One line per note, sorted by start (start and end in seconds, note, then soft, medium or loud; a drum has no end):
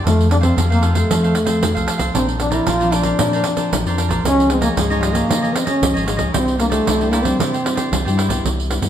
0.03 0.49 F2 medium
0.03 0.55 F2 soft
0.03 0.28 F3 soft
0.03 0.28 A3 medium
0.03 0.30 A3 medium
0.03 0.28 C4 medium
0.03 0.28 F4 soft
0.03 0.28 A4 soft
0.03 0.28 C5 soft
0.03 0.28 F5 soft
0.03 pandeiro medium
0.21 pandeiro soft
0.29 0.67 F3 medium
0.29 0.67 A3 medium
0.29 0.67 C4 medium
0.29 0.37 D4 medium
0.29 muted cavaquinho stroke soft
0.29 pandeiro medium
0.41 0.55 C4 medium
0.41 0.56 A4 medium
0.41 0.55 C5 medium
0.41 0.55 F5 medium
0.41 pandeiro medium
0.56 1.02 F2 medium
0.56 1.08 C3 medium
0.56 0.69 F4 medium
0.56 0.69 A4 medium
0.56 0.70 C5 soft
0.56 0.69 F5 medium
0.56 pandeiro medium
0.70 0.94 F3 medium
0.70 0.94 A3 medium
0.70 0.84 A#3 medium
0.70 0.94 C4 medium
0.70 0.81 A4 medium
0.70 0.82 C5 medium
0.70 0.83 F5 medium
0.70 pandeiro soft
0.82 0.95 F4 medium
0.82 0.95 A4 medium
0.82 0.94 C5 medium
0.82 0.93 F5 medium
0.82 pandeiro medium
0.94 1.05 F3 medium
0.94 1.84 A3 medium
0.94 1.05 A3 medium
0.94 1.06 C4 medium
0.94 1.09 A4 medium
0.94 1.08 C5 medium
0.94 1.08 F5 medium
0.94 pandeiro medium
1.09 1.60 F2 medium
1.09 1.33 F3 loud
1.09 1.35 F3 medium
1.09 1.35 A3 medium
1.09 1.36 C4 medium
1.09 1.22 F4 soft
1.09 1.22 A4 soft
1.09 1.22 C5 medium
1.09 1.22 F5 medium
1.09 pandeiro medium
1.23 1.34 A4 medium
1.23 1.34 C5 medium
1.23 1.34 F5 medium
1.23 pandeiro soft
1.35 muted cavaquinho stroke soft
1.35 pandeiro medium
1.45 1.70 F3 medium
1.45 1.70 A3 medium
1.45 1.71 C4 medium
1.45 1.74 A4 medium
1.45 1.73 C5 medium
1.45 1.72 F5 medium
1.45 pandeiro medium
1.63 1.74 F2 medium
1.63 2.13 C3 medium
1.63 pandeiro medium
1.75 1.87 C2 medium
1.75 2.14 F3 medium
1.75 2.14 A3 medium
1.75 2.14 C4 medium
1.75 1.86 A4 medium
1.75 1.86 C5 medium
1.75 1.87 F5 medium
1.75 pandeiro soft
1.86 2.00 F4 soft
1.86 1.99 A4 medium
1.86 1.98 C5 medium
1.86 1.97 F5 medium
1.86 pandeiro medium
1.98 2.11 C2 medium
1.98 2.13 A4 medium
1.98 2.13 C5 medium
1.98 2.12 F5 medium
1.98 pandeiro medium
2.14 2.59 A#1 medium
2.14 2.65 A#2 medium
2.14 2.31 F3 medium
2.14 2.27 C4 medium
2.14 2.31 C4 medium
2.14 2.37 D4 soft
2.14 2.31 D4 medium
2.14 2.37 A#4 soft
2.14 2.38 C5 soft
2.14 2.38 D5 soft
2.14 pandeiro medium
2.29 pandeiro soft
2.38 2.67 F3 medium
2.38 2.76 C4 medium
2.38 2.55 D4 medium
2.38 2.76 D4 medium
2.38 muted cavaquinho stroke soft
2.38 pandeiro medium
2.51 2.71 E4 medium
2.51 2.65 A#4 medium
2.51 2.65 C5 medium
2.51 2.65 D5 medium
2.51 pandeiro medium
2.66 3.12 A#1 medium
2.66 2.80 F3 medium
2.66 2.79 D4 medium
2.66 2.96 F4 loud
2.66 2.79 A#4 medium
2.66 2.80 C5 medium
2.66 2.79 D5 medium
2.66 pandeiro medium
2.80 3.02 F3 medium
2.80 3.03 C4 medium
2.80 3.03 D4 medium
2.80 2.90 A#4 medium
2.80 2.91 C5 medium
2.80 2.91 D5 medium
2.80 pandeiro soft
2.91 3.04 D4 medium
2.91 3.99 D4 loud
2.91 3.04 A#4 medium
2.91 3.03 C5 medium
2.91 3.02 D5 medium
2.91 pandeiro medium
3.03 3.14 F3 medium
3.03 3.14 C4 medium
3.03 3.15 D4 medium
3.03 3.18 A#4 soft
3.03 3.18 C5 medium
3.03 3.17 D5 medium
3.03 pandeiro medium
3.19 3.42 A#2 loud
3.19 3.70 A#2 medium
3.19 3.42 F3 medium
3.19 3.42 C4 medium
3.19 3.31 D4 soft
3.19 3.42 D4 medium
3.19 3.32 A#4 soft
3.19 3.32 C5 medium
3.19 3.32 D5 soft
3.19 pandeiro medium
3.33 3.44 A#4 medium
3.33 3.45 C5 medium
3.33 3.45 D5 medium
3.33 pandeiro soft
3.44 3.71 F3 medium
3.44 3.81 C4 medium
3.44 3.81 D4 medium
3.44 muted cavaquinho stroke soft
3.44 pandeiro medium
3.57 3.84 A#4 medium
3.57 3.84 C5 medium
3.57 3.83 D5 medium
3.57 pandeiro medium
3.72 3.83 A#1 medium
3.72 3.84 F3 medium
3.72 pandeiro medium
3.86 4.10 F2 medium
3.86 4.21 F3 medium
3.86 4.21 C4 medium
3.86 4.21 D4 medium
3.86 3.97 A#4 medium
3.86 3.98 C5 medium
3.86 3.98 D5 medium
3.86 pandeiro soft
3.97 4.10 D4 soft
3.97 4.10 A#4 soft
3.97 4.09 C5 medium
3.97 4.08 D5 medium
3.97 pandeiro medium
4.08 4.21 A#1 medium
4.08 4.24 A#4 medium
4.08 4.23 C5 medium
4.08 4.22 D5 medium
4.08 pandeiro medium
4.24 4.69 C#2 medium
4.24 4.75 C#3 medium
4.24 4.47 F3 medium
4.24 4.47 G#3 medium
4.24 4.51 C#4 loud
4.24 4.47 D#4 medium
4.24 4.48 F4 soft
4.24 4.49 G#4 soft
4.24 4.49 C#5 soft
4.24 4.49 D#5 soft
4.24 pandeiro medium
4.40 pandeiro soft
4.49 4.86 F3 medium
4.49 4.86 G#3 medium
4.49 4.62 C4 medium
4.49 4.86 D#4 medium
4.49 muted cavaquinho stroke soft
4.49 pandeiro medium
4.61 4.69 A#3 medium
4.61 4.76 G#4 medium
4.61 4.75 C#5 medium
4.61 4.75 D#5 medium
4.61 pandeiro medium
4.76 5.21 C#2 medium
4.76 5.27 G#2 medium
4.76 5.05 G#3 medium
4.76 4.89 F4 medium
4.76 4.89 G#4 medium
4.76 4.89 C#5 medium
4.76 4.89 D#5 medium
4.76 pandeiro medium
4.90 5.25 F3 medium
4.90 5.26 G#3 medium
4.90 5.26 D#4 medium
4.90 5.00 G#4 medium
4.90 5.01 C#5 medium
4.90 5.02 D#5 medium
4.90 pandeiro soft
5.01 5.15 G3 medium
5.01 5.14 F4 medium
5.01 5.14 G#4 medium
5.01 5.13 C#5 medium
5.01 5.11 D#5 medium
5.01 pandeiro medium
5.13 5.57 A#3 medium
5.13 5.28 G#4 medium
5.13 5.27 C#5 medium
5.13 5.27 D#5 medium
5.13 pandeiro medium
5.29 5.79 C#3 medium
5.29 5.52 C#3 loud
5.29 5.63 F3 medium
5.29 5.64 G#3 medium
5.29 5.64 D#4 medium
5.29 5.41 F4 soft
5.29 5.42 G#4 soft
5.29 5.42 C#5 medium
5.29 5.41 D#5 medium
5.29 pandeiro medium
5.42 5.53 G#4 medium
5.42 5.53 C#5 medium
5.42 5.53 D#5 medium
5.42 pandeiro soft
5.53 5.67 C4 medium
5.53 muted cavaquinho stroke soft
5.53 pandeiro medium
5.65 6.05 C#4 medium
5.65 5.93 G#4 medium
5.65 5.93 C#5 medium
5.65 5.92 D#5 medium
5.65 pandeiro medium
5.82 5.93 C#2 medium
5.82 6.32 G#2 medium
5.82 6.04 F3 medium
5.82 6.04 G#3 medium
5.82 6.04 D#4 medium
5.82 pandeiro medium
5.94 6.20 G#1 medium
5.94 6.04 G#4 medium
5.94 6.05 C#5 medium
5.94 6.05 D#5 medium
5.94 pandeiro soft
6.04 6.32 F3 soft
6.04 6.32 G#3 medium
6.04 6.32 D#4 medium
6.04 6.18 F4 medium
6.04 6.18 G#4 soft
6.04 6.17 C#5 medium
6.04 6.16 D#5 medium
6.04 pandeiro medium
6.17 6.31 C#2 medium
6.17 6.32 G#4 medium
6.17 6.32 C#5 medium
6.17 6.31 D#5 medium
6.17 pandeiro medium
6.32 6.79 C2 medium
6.32 6.84 C3 medium
6.32 6.56 G3 medium
6.32 6.59 C4 loud
6.32 6.57 D4 medium
6.32 6.57 E4 soft
6.32 6.57 E4 medium
6.32 6.58 G4 soft
6.32 6.58 C5 soft
6.32 6.58 D5 soft
6.32 pandeiro medium
6.48 pandeiro soft
6.58 6.85 G3 medium
6.58 6.66 A#3 medium
6.58 6.85 D4 medium
6.58 6.85 E4 medium
6.58 muted cavaquinho stroke soft
6.58 pandeiro medium
6.70 7.12 A3 medium
6.70 6.85 G4 medium
6.70 6.85 C5 medium
6.70 6.84 D5 medium
6.70 pandeiro medium
6.86 7.32 C2 medium
6.86 6.99 G3 medium
6.86 6.98 E4 soft
6.86 6.99 G4 medium
6.86 6.99 C5 medium
6.86 6.99 D5 medium
6.86 pandeiro medium
7.00 7.22 G3 medium
7.00 7.22 D4 medium
7.00 7.23 E4 medium
7.00 7.11 G4 medium
7.00 7.12 C5 medium
7.00 7.12 D5 medium
7.00 pandeiro soft
7.10 7.25 A#3 medium
7.10 7.25 E4 medium
7.10 7.24 G4 medium
7.10 7.24 C5 medium
7.10 7.22 D5 medium
7.10 pandeiro medium
7.23 7.34 G3 medium
7.23 8.17 C4 medium
7.23 7.35 D4 medium
7.23 7.35 E4 medium
7.23 7.38 G4 medium
7.23 7.38 C5 medium
7.23 7.37 D5 medium
7.23 pandeiro medium
7.39 7.62 C3 loud
7.39 7.89 C3 medium
7.39 7.55 G3 medium
7.39 7.55 D4 medium
7.39 7.51 E4 soft
7.39 7.55 E4 medium
7.39 7.52 G4 soft
7.39 7.52 C5 soft
7.39 7.51 D5 soft
7.39 pandeiro medium
7.52 7.63 G4 medium
7.52 7.63 C5 medium
7.52 7.64 D5 medium
7.52 pandeiro soft
7.64 7.93 G3 medium
7.64 8.01 D4 medium
7.64 8.01 E4 medium
7.64 muted cavaquinho stroke soft
7.64 pandeiro medium
7.76 8.04 G4 medium
7.76 8.03 C5 medium
7.76 8.02 D5 medium
7.76 pandeiro medium
7.92 8.03 C2 medium
7.92 8.06 G3 medium
7.92 pandeiro medium
8.05 8.30 G2 medium
8.05 8.28 G3 medium
8.05 8.29 D4 medium
8.05 8.29 E4 medium
8.05 8.17 G4 medium
8.05 8.17 C5 medium
8.05 8.17 D5 medium
8.05 pandeiro soft
8.17 8.30 E4 medium
8.17 8.30 G4 medium
8.17 8.29 C5 medium
8.17 8.28 D5 medium
8.17 pandeiro medium
8.28 8.41 C2 medium
8.28 8.66 G3 medium
8.28 8.66 B3 medium
8.28 8.66 E4 medium
8.28 8.43 G4 medium
8.28 8.43 C5 medium
8.28 8.42 D5 medium
8.28 pandeiro medium
8.44 8.78 C2 medium
8.44 8.89 C3 soft
8.44 pandeiro medium
8.60 pandeiro soft
8.71 8.79 G3 medium
8.71 8.79 B3 medium
8.71 8.79 E4 medium
8.71 pandeiro medium
8.81 8.89 G2 medium
8.81 8.89 G3 medium
8.81 8.89 B3 medium
8.81 8.89 E4 medium
8.81 pandeiro medium